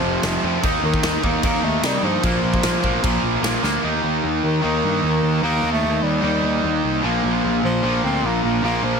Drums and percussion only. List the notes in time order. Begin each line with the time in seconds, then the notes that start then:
0.23 snare, crash
0.63 kick, crash
0.94 kick
1.03 snare, crash
1.24 kick
1.43 kick, crash
1.83 snare, crash
2.23 kick, crash
2.54 kick
2.63 snare, crash
2.84 kick
3.04 kick, crash
3.44 snare, crash
3.64 snare